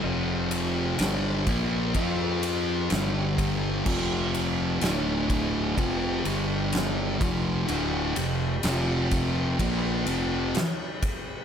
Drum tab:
CC |--------|x-------|--------|
RD |-xxxxxxx|-xxxxxxx|xxxxxxxx|
SD |--o---o-|--o---o-|--o---o-|
BD |---oo--o|o--oo--o|---oo--o|